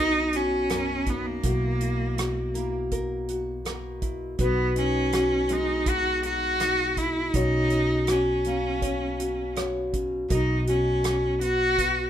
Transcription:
Already playing: B1 B2 B3 D#4 F#4 A#4
0.33 C#4 F#4, closed hi-hat
0.69 F#2 A#4, cross-stick, closed hi-hat
1.06 B3 D#4, kick, closed hi-hat
1.26 A#3
1.43 B1 B2 E4 F#4 A#4, kick, closed hi-hat
1.81 E4, closed hi-hat
2.18 F#4, cross-stick, closed hi-hat
2.54 A#3 E4, closed hi-hat
2.92 A#4, kick, closed hi-hat
3.29 F#4, closed hi-hat
3.65 B2 A#4, cross-stick, closed hi-hat
4.02 E4, kick, closed hi-hat
4.38 B1 B2 B3 D#4 F#4 B4, kick, closed hi-hat
4.76 C#4 D#4, closed hi-hat
5.12 F#4, cross-stick, closed hi-hat
5.49 G#3 D#4, closed hi-hat
5.86 D#4 F#4, kick, closed hi-hat
6.23 D#4 F#4, closed hi-hat
6.60 B2 D#4, cross-stick, closed hi-hat
6.97 E4, kick, closed hi-hat
7.34 B1 B2 C#4 D#4 F#4 C#5, kick, closed hi-hat
7.70 C#4, closed hi-hat
8.07 C#4 F#4, cross-stick, closed hi-hat
8.44 A#3 C#4, closed hi-hat
8.82 C#5, kick, closed hi-hat
9.20 F#4, closed hi-hat
9.55 B2 C#5, cross-stick, closed hi-hat
9.94 C#4, kick, closed hi-hat
10.29 B1 B2 D#4 F#4 A#4 D#5, kick, closed hi-hat
10.67 C#4 F#4, closed hi-hat
11.04 A#4, cross-stick, closed hi-hat
11.41 B3 F#4, closed hi-hat
11.78 B3, kick, closed hi-hat

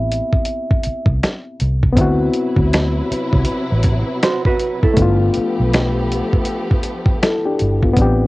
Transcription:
Already playing: A1 B3 C4 E4 G4 E5
0.12 closed hi-hat
0.33 kick
0.45 closed hi-hat
0.71 kick
0.83 muted fingered electric bass stroke, closed hi-hat
1.06 C2, kick
1.23 finger snap, snare, closed hi-hat
1.60 C2, closed hi-hat
1.83 kick
1.93 B3 C4
1.97 D2 C3 F#3 E4 B4, kick, closed hi-hat
2.01 F#4
2.33 closed hi-hat
2.56 D2, kick
2.73 finger snap, snare, closed hi-hat
3.11 muted fingered electric bass stroke, closed hi-hat
3.33 C2, kick
3.45 closed hi-hat
3.72 A1
3.83 kick, closed hi-hat
4.23 F#4 C5, finger snap, snare, closed hi-hat
4.45 F#4 B4, kick
4.59 closed hi-hat
4.83 E4 A4, kick
4.94 F3 A3 B3 G4, kick, closed hi-hat
4.98 G1 D4 F4
5.34 muted fingered electric bass stroke, closed hi-hat
5.60 B1
5.73 finger snap, snare, closed hi-hat
6.12 closed hi-hat
6.33 kick
6.45 closed hi-hat
6.71 kick
6.83 closed hi-hat
7.06 kick
7.22 E4 A4, finger snap, snare, closed hi-hat
7.45 D4 G4
7.59 G1, closed hi-hat
7.83 B3 F4, kick
7.93 B3 C4, kick, closed hi-hat
7.98 A1 D4 G4

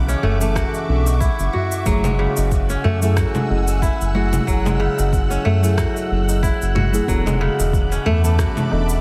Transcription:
Already playing: B1 C#3 E3 G#3 C#4 E4 F#4 E5 F#5 A5 C#6 D6
0.08 C#4, tabla tin, cabasa
0.23 F#1 A3, tabla ge
0.40 E3 A3 C#4 A5, cabasa
0.55 F#4, kick, cross-stick, cabasa
0.74 tabla tin, cabasa
0.88 B1 E3 C#4 D4 A4
1.06 tabla na, cabasa
1.20 E4, kick, cabasa
1.39 F#1, cabasa
1.53 F#4, tabla na, tabla ge
1.72 tabla tin, cabasa
1.85 F#1 F#3 A3 E4 G#4 F#5 G#5 E6, kick, cabasa
2.04 G#3, tabla tin, low conga, cabasa
2.19 C#3
2.37 F#1, tabla na, cabasa
2.52 kick, cabasa
2.70 C#4, tabla tin, cabasa
2.84 F#2 A3, tabla ge
3.02 F#3 A3 E4 G#4, cabasa
3.17 F#4, kick, cross-stick, cabasa
3.35 low conga, cabasa
3.49 F#1 F#3 A3 E4 G#4, tabla na, tabla tin
3.68 tabla tin, cabasa
3.82 E4, kick, cabasa
4.01 F#1, cabasa
4.14 F#3 A3 E4 F#4 G#4, tabla tin
4.33 low conga, cabasa
4.45 F#1 F#3 E4, kick, cabasa
4.49 G#4
4.65 G#3, tabla tin, low conga, cabasa
4.80 C#3, tabla na
4.98 F#1, tabla na, cabasa
5.13 kick, cabasa
5.30 C#4, tabla tin, cabasa
5.45 F#2 A3, tabla ge
5.61 F#3 A3 E4 G#4, cabasa
5.77 F#4, kick, cross-stick, cabasa
5.95 tabla tin, cabasa
6.11 F#1
6.29 tabla na, cabasa
6.43 E4, kick, cabasa
6.62 F#1, cabasa
6.75 F#4, tabla na, low conga, tabla ge
6.92 F#3 A3 E4 G#4, cabasa
7.07 E1 E3 F#3 B3 D4 A4 E5 A5 B5 D6, kick, cabasa
7.26 G#3, tabla tin, low conga, cabasa
7.41 C#3
7.59 E1, tabla na, cabasa
7.73 kick, cabasa
7.92 C#4, tabla tin, cabasa
8.06 E2 A3, tabla ge
8.22 E3 A3 B3 A5, cabasa
8.39 F#4, kick, cross-stick, cabasa
8.57 low conga, cabasa
8.70 E1 E3 B3 D4 A4, tabla na, tabla tin
8.89 tabla tin, cabasa

